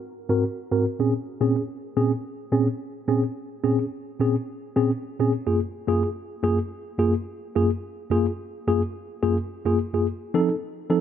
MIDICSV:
0, 0, Header, 1, 2, 480
1, 0, Start_track
1, 0, Key_signature, -5, "minor"
1, 0, Tempo, 557621
1, 977, Time_signature, 4, 2, 24, 8
1, 9473, End_track
2, 0, Start_track
2, 0, Title_t, "Tine electric piano"
2, 0, Program_c, 0, 4
2, 251, Note_on_c, 0, 60, 68
2, 252, Note_on_c, 0, 44, 77
2, 253, Note_on_c, 0, 66, 74
2, 254, Note_on_c, 0, 70, 84
2, 374, Note_off_c, 0, 44, 0
2, 374, Note_off_c, 0, 60, 0
2, 375, Note_off_c, 0, 66, 0
2, 376, Note_off_c, 0, 70, 0
2, 613, Note_on_c, 0, 44, 74
2, 616, Note_on_c, 0, 60, 65
2, 617, Note_on_c, 0, 66, 65
2, 619, Note_on_c, 0, 70, 79
2, 725, Note_off_c, 0, 44, 0
2, 727, Note_off_c, 0, 60, 0
2, 727, Note_off_c, 0, 66, 0
2, 728, Note_off_c, 0, 70, 0
2, 855, Note_on_c, 0, 46, 67
2, 860, Note_on_c, 0, 68, 70
2, 862, Note_on_c, 0, 60, 59
2, 863, Note_on_c, 0, 61, 67
2, 966, Note_off_c, 0, 46, 0
2, 969, Note_off_c, 0, 68, 0
2, 970, Note_off_c, 0, 60, 0
2, 970, Note_off_c, 0, 61, 0
2, 1208, Note_on_c, 0, 46, 88
2, 1211, Note_on_c, 0, 60, 72
2, 1213, Note_on_c, 0, 61, 78
2, 1215, Note_on_c, 0, 68, 83
2, 1333, Note_off_c, 0, 46, 0
2, 1334, Note_off_c, 0, 68, 0
2, 1335, Note_off_c, 0, 60, 0
2, 1336, Note_off_c, 0, 61, 0
2, 1345, Note_on_c, 0, 68, 44
2, 1348, Note_on_c, 0, 61, 38
2, 1390, Note_off_c, 0, 68, 0
2, 1392, Note_off_c, 0, 61, 0
2, 1690, Note_on_c, 0, 46, 81
2, 1693, Note_on_c, 0, 60, 68
2, 1694, Note_on_c, 0, 68, 91
2, 1696, Note_on_c, 0, 61, 69
2, 1814, Note_off_c, 0, 46, 0
2, 1816, Note_off_c, 0, 60, 0
2, 1816, Note_off_c, 0, 68, 0
2, 1817, Note_off_c, 0, 61, 0
2, 2168, Note_on_c, 0, 46, 80
2, 2170, Note_on_c, 0, 60, 74
2, 2170, Note_on_c, 0, 61, 77
2, 2172, Note_on_c, 0, 68, 78
2, 2293, Note_off_c, 0, 46, 0
2, 2294, Note_off_c, 0, 60, 0
2, 2294, Note_off_c, 0, 61, 0
2, 2295, Note_off_c, 0, 68, 0
2, 2651, Note_on_c, 0, 46, 70
2, 2651, Note_on_c, 0, 61, 78
2, 2655, Note_on_c, 0, 60, 74
2, 2657, Note_on_c, 0, 68, 80
2, 2775, Note_off_c, 0, 46, 0
2, 2775, Note_off_c, 0, 61, 0
2, 2777, Note_off_c, 0, 60, 0
2, 2778, Note_off_c, 0, 68, 0
2, 3129, Note_on_c, 0, 60, 72
2, 3130, Note_on_c, 0, 46, 72
2, 3131, Note_on_c, 0, 61, 74
2, 3133, Note_on_c, 0, 68, 79
2, 3254, Note_off_c, 0, 60, 0
2, 3254, Note_off_c, 0, 68, 0
2, 3255, Note_off_c, 0, 46, 0
2, 3255, Note_off_c, 0, 61, 0
2, 3264, Note_on_c, 0, 68, 45
2, 3265, Note_on_c, 0, 61, 34
2, 3310, Note_off_c, 0, 68, 0
2, 3311, Note_off_c, 0, 61, 0
2, 3616, Note_on_c, 0, 46, 84
2, 3617, Note_on_c, 0, 60, 73
2, 3620, Note_on_c, 0, 61, 73
2, 3625, Note_on_c, 0, 68, 87
2, 3738, Note_off_c, 0, 46, 0
2, 3738, Note_off_c, 0, 60, 0
2, 3740, Note_off_c, 0, 61, 0
2, 3742, Note_off_c, 0, 68, 0
2, 4097, Note_on_c, 0, 60, 80
2, 4100, Note_on_c, 0, 46, 71
2, 4100, Note_on_c, 0, 68, 88
2, 4102, Note_on_c, 0, 61, 68
2, 4219, Note_off_c, 0, 60, 0
2, 4220, Note_off_c, 0, 46, 0
2, 4220, Note_off_c, 0, 68, 0
2, 4221, Note_off_c, 0, 61, 0
2, 4473, Note_on_c, 0, 60, 67
2, 4474, Note_on_c, 0, 46, 75
2, 4477, Note_on_c, 0, 61, 74
2, 4477, Note_on_c, 0, 68, 84
2, 4577, Note_off_c, 0, 46, 0
2, 4577, Note_off_c, 0, 60, 0
2, 4578, Note_off_c, 0, 61, 0
2, 4578, Note_off_c, 0, 68, 0
2, 4705, Note_on_c, 0, 42, 65
2, 4705, Note_on_c, 0, 58, 62
2, 4706, Note_on_c, 0, 68, 77
2, 4707, Note_on_c, 0, 65, 58
2, 4812, Note_off_c, 0, 58, 0
2, 4813, Note_off_c, 0, 42, 0
2, 4813, Note_off_c, 0, 68, 0
2, 4814, Note_off_c, 0, 65, 0
2, 5058, Note_on_c, 0, 42, 81
2, 5058, Note_on_c, 0, 58, 72
2, 5065, Note_on_c, 0, 65, 73
2, 5065, Note_on_c, 0, 68, 95
2, 5179, Note_off_c, 0, 42, 0
2, 5179, Note_off_c, 0, 58, 0
2, 5183, Note_off_c, 0, 65, 0
2, 5183, Note_off_c, 0, 68, 0
2, 5192, Note_on_c, 0, 65, 33
2, 5192, Note_on_c, 0, 68, 44
2, 5235, Note_off_c, 0, 65, 0
2, 5235, Note_off_c, 0, 68, 0
2, 5536, Note_on_c, 0, 58, 76
2, 5537, Note_on_c, 0, 42, 84
2, 5541, Note_on_c, 0, 65, 65
2, 5542, Note_on_c, 0, 68, 96
2, 5658, Note_off_c, 0, 58, 0
2, 5659, Note_off_c, 0, 42, 0
2, 5661, Note_off_c, 0, 65, 0
2, 5661, Note_off_c, 0, 68, 0
2, 6012, Note_on_c, 0, 42, 78
2, 6015, Note_on_c, 0, 58, 77
2, 6016, Note_on_c, 0, 65, 73
2, 6018, Note_on_c, 0, 68, 88
2, 6137, Note_off_c, 0, 42, 0
2, 6138, Note_off_c, 0, 58, 0
2, 6138, Note_off_c, 0, 65, 0
2, 6139, Note_off_c, 0, 68, 0
2, 6500, Note_on_c, 0, 42, 85
2, 6503, Note_on_c, 0, 65, 68
2, 6504, Note_on_c, 0, 58, 71
2, 6508, Note_on_c, 0, 68, 90
2, 6620, Note_off_c, 0, 42, 0
2, 6622, Note_off_c, 0, 65, 0
2, 6623, Note_off_c, 0, 58, 0
2, 6624, Note_off_c, 0, 68, 0
2, 6978, Note_on_c, 0, 42, 84
2, 6982, Note_on_c, 0, 58, 84
2, 6983, Note_on_c, 0, 65, 73
2, 6984, Note_on_c, 0, 68, 94
2, 7099, Note_off_c, 0, 42, 0
2, 7102, Note_off_c, 0, 58, 0
2, 7102, Note_off_c, 0, 65, 0
2, 7102, Note_off_c, 0, 68, 0
2, 7115, Note_on_c, 0, 65, 40
2, 7119, Note_on_c, 0, 68, 39
2, 7156, Note_off_c, 0, 65, 0
2, 7158, Note_off_c, 0, 68, 0
2, 7466, Note_on_c, 0, 42, 87
2, 7468, Note_on_c, 0, 58, 73
2, 7471, Note_on_c, 0, 68, 96
2, 7472, Note_on_c, 0, 65, 66
2, 7583, Note_off_c, 0, 42, 0
2, 7584, Note_off_c, 0, 58, 0
2, 7586, Note_off_c, 0, 65, 0
2, 7586, Note_off_c, 0, 68, 0
2, 7940, Note_on_c, 0, 42, 86
2, 7943, Note_on_c, 0, 68, 90
2, 7944, Note_on_c, 0, 58, 80
2, 7944, Note_on_c, 0, 65, 76
2, 8060, Note_off_c, 0, 42, 0
2, 8062, Note_off_c, 0, 58, 0
2, 8062, Note_off_c, 0, 65, 0
2, 8062, Note_off_c, 0, 68, 0
2, 8311, Note_on_c, 0, 42, 77
2, 8311, Note_on_c, 0, 58, 73
2, 8311, Note_on_c, 0, 65, 74
2, 8316, Note_on_c, 0, 68, 88
2, 8416, Note_off_c, 0, 42, 0
2, 8416, Note_off_c, 0, 58, 0
2, 8416, Note_off_c, 0, 65, 0
2, 8418, Note_off_c, 0, 68, 0
2, 8554, Note_on_c, 0, 42, 62
2, 8554, Note_on_c, 0, 58, 59
2, 8557, Note_on_c, 0, 65, 64
2, 8558, Note_on_c, 0, 68, 77
2, 8657, Note_off_c, 0, 42, 0
2, 8657, Note_off_c, 0, 58, 0
2, 8659, Note_off_c, 0, 65, 0
2, 8659, Note_off_c, 0, 68, 0
2, 8902, Note_on_c, 0, 53, 84
2, 8902, Note_on_c, 0, 60, 73
2, 8903, Note_on_c, 0, 63, 78
2, 8908, Note_on_c, 0, 69, 98
2, 9021, Note_off_c, 0, 53, 0
2, 9021, Note_off_c, 0, 60, 0
2, 9021, Note_off_c, 0, 63, 0
2, 9021, Note_off_c, 0, 69, 0
2, 9032, Note_on_c, 0, 69, 42
2, 9033, Note_on_c, 0, 63, 40
2, 9074, Note_off_c, 0, 69, 0
2, 9075, Note_off_c, 0, 63, 0
2, 9379, Note_on_c, 0, 60, 73
2, 9381, Note_on_c, 0, 53, 90
2, 9382, Note_on_c, 0, 63, 75
2, 9385, Note_on_c, 0, 69, 94
2, 9473, Note_off_c, 0, 53, 0
2, 9473, Note_off_c, 0, 60, 0
2, 9473, Note_off_c, 0, 63, 0
2, 9473, Note_off_c, 0, 69, 0
2, 9473, End_track
0, 0, End_of_file